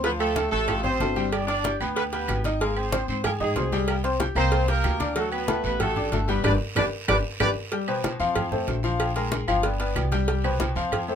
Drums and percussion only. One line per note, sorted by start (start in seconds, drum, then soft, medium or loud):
0.04 cowbell loud
0.04 high conga soft
0.04 long guiro medium
0.20 high conga soft
0.20 low agogo loud
0.20 claves medium
0.36 cowbell medium
0.36 high conga loud
0.36 low timbale medium
0.36 low agogo medium
0.36 short guiro medium
0.52 high conga soft
0.52 short guiro medium
0.68 cowbell loud
0.68 high conga soft
0.68 low conga medium
0.68 low agogo loud
0.68 long guiro medium
0.68 claves medium
0.84 high conga soft
0.84 low conga medium
0.84 low agogo medium
1.00 cowbell medium
1.00 high conga medium
1.00 low timbale medium
1.00 short guiro medium
1.16 high conga medium
1.16 short guiro medium
1.32 cowbell loud
1.32 high conga soft
1.32 low agogo loud
1.32 long guiro medium
1.32 claves medium
1.48 cowbell medium
1.48 high conga soft
1.48 low agogo medium
1.64 cowbell medium
1.64 high conga loud
1.64 low timbale medium
1.64 short guiro medium
1.81 high conga soft
1.81 low agogo loud
1.81 short guiro medium
1.81 claves medium
1.96 cowbell loud
1.96 high conga soft
1.96 low agogo medium
1.96 long guiro medium
2.13 cowbell medium
2.13 high conga soft
2.13 low agogo medium
2.28 cowbell medium
2.28 high conga medium
2.28 low timbale medium
2.28 low agogo loud
2.28 short guiro medium
2.28 claves medium
2.44 cowbell medium
2.44 high conga medium
2.44 short guiro medium
2.60 cowbell loud
2.60 high conga soft
2.60 long guiro medium
2.77 high conga soft
2.77 low agogo loud
2.77 claves medium
2.92 cowbell medium
2.92 high conga loud
2.92 low timbale medium
2.92 low agogo medium
2.92 short guiro medium
3.08 high conga soft
3.08 short guiro medium
3.24 cowbell loud
3.24 high conga soft
3.24 low conga medium
3.24 low agogo loud
3.24 long guiro medium
3.24 claves medium
3.40 high conga soft
3.40 low conga medium
3.40 low agogo medium
3.56 cowbell medium
3.56 high conga medium
3.56 low timbale medium
3.56 short guiro medium
3.72 high conga medium
3.72 short guiro medium
3.88 cowbell loud
3.88 high conga soft
3.88 low agogo loud
3.88 long guiro medium
3.88 claves medium
4.04 cowbell medium
4.04 high conga soft
4.04 low agogo medium
4.20 cowbell medium
4.20 high conga loud
4.20 low timbale medium
4.20 short guiro medium
4.36 high conga soft
4.36 low agogo loud
4.36 short guiro medium
4.36 claves medium
4.52 cowbell loud
4.52 high conga soft
4.52 low agogo loud
4.52 long guiro medium
4.68 cowbell medium
4.68 high conga soft
4.68 low agogo medium
4.83 cowbell medium
4.83 high conga medium
4.83 low timbale medium
4.83 low agogo loud
4.83 short guiro medium
4.83 claves medium
5.00 cowbell medium
5.00 high conga medium
5.00 short guiro medium
5.16 cowbell loud
5.16 high conga soft
5.16 long guiro medium
5.32 high conga soft
5.32 low agogo loud
5.32 claves medium
5.48 cowbell medium
5.48 high conga loud
5.48 low timbale medium
5.48 low agogo medium
5.48 short guiro medium
5.64 high conga soft
5.64 short guiro medium
5.80 cowbell loud
5.80 high conga soft
5.80 low conga medium
5.80 low agogo loud
5.80 long guiro medium
5.80 claves medium
5.96 high conga soft
5.96 low conga medium
5.96 low agogo medium
6.12 cowbell medium
6.12 high conga medium
6.12 low timbale medium
6.12 short guiro medium
6.28 high conga medium
6.28 short guiro medium
6.44 cowbell loud
6.44 low conga loud
6.44 high timbale loud
6.44 long guiro loud
6.44 claves medium
6.76 cowbell loud
6.76 low conga loud
6.76 high timbale loud
6.76 long guiro loud
6.76 claves loud
7.08 cowbell loud
7.08 low conga loud
7.08 high timbale loud
7.08 long guiro loud
7.08 claves loud
7.40 cowbell medium
7.40 low conga loud
7.40 high timbale loud
7.40 long guiro loud
7.40 claves loud
7.72 cowbell loud
7.72 high conga soft
7.72 long guiro medium
7.88 high conga soft
7.88 low agogo loud
7.88 claves medium
8.04 cowbell medium
8.04 high conga loud
8.04 low timbale medium
8.04 low agogo medium
8.04 short guiro medium
8.20 high conga soft
8.20 short guiro medium
8.35 cowbell loud
8.35 high conga soft
8.35 low conga medium
8.35 low agogo loud
8.35 long guiro medium
8.35 claves medium
8.52 high conga soft
8.52 low conga medium
8.52 low agogo medium
8.68 cowbell medium
8.68 high conga medium
8.68 low timbale medium
8.68 short guiro medium
8.83 high conga medium
8.83 short guiro medium
8.99 cowbell loud
8.99 high conga soft
8.99 low agogo loud
8.99 long guiro medium
8.99 claves medium
9.16 cowbell medium
9.16 high conga soft
9.16 low agogo medium
9.32 cowbell medium
9.32 high conga loud
9.32 low timbale medium
9.32 short guiro medium
9.48 high conga soft
9.48 low agogo loud
9.48 short guiro medium
9.48 claves medium
9.63 cowbell loud
9.63 high conga soft
9.63 low agogo medium
9.63 long guiro medium
9.80 cowbell medium
9.80 high conga soft
9.80 low agogo medium
9.96 cowbell medium
9.96 high conga medium
9.96 low timbale medium
9.96 low agogo loud
9.96 short guiro medium
9.96 claves medium
10.12 cowbell medium
10.12 high conga medium
10.12 short guiro medium
10.28 cowbell loud
10.28 high conga soft
10.28 long guiro medium
10.44 high conga soft
10.44 low agogo loud
10.44 claves medium
10.60 cowbell medium
10.60 high conga loud
10.60 low timbale medium
10.60 low agogo medium
10.60 short guiro medium
10.76 high conga soft
10.76 short guiro medium
10.92 cowbell loud
10.92 high conga soft
10.92 low conga medium
10.92 low agogo loud
10.92 long guiro medium
10.92 claves medium
11.08 high conga soft
11.08 low agogo medium